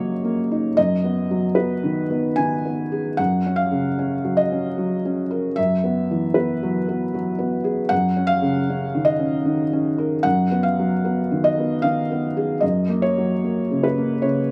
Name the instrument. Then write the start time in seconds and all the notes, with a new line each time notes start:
felt piano
Already playing: F#2 C#3 F#3 A#3 C#5 D#5 F5
0.24 A#3
0.52 D#4
0.77 F#2 D#5
1.04 B3
1.31 F#3
1.55 B3 B4
1.84 D#3
2.10 B3
2.36 D#3 G#5
2.65 B3
2.92 G#4
3.17 F#2 F#5
3.46 C#4
3.56 F5
3.71 C#3
3.99 C#4
4.25 F#3
4.37 D#5
4.52 C#4
4.78 F#3
5.05 C#4
5.31 A#4
5.56 F#2 E5
5.84 B3
6.11 E3
6.34 B3 B4
6.63 F#3
6.89 B3
7.14 F#3
7.39 B3
7.64 G#4
7.89 F#2 F#5
8.16 C#4
8.27 F5
8.42 C#3
8.70 C#4
8.95 D#3
9.05 D#5
9.19 C#4
9.46 D#3
9.73 C#4
9.98 A#4
10.23 F#2 F#5
10.51 B3
10.63 F5
10.79 F#3
11.05 B3
11.32 D#3
11.44 D#5
11.59 B3
11.82 D#3 F5
12.12 B3
12.37 G#4
12.61 F#2 D#5
12.89 A#3
13.02 C#5
13.18 F#3
13.44 A#3
13.71 C#3
13.83 B4
13.98 A#3
14.22 C#3 C#5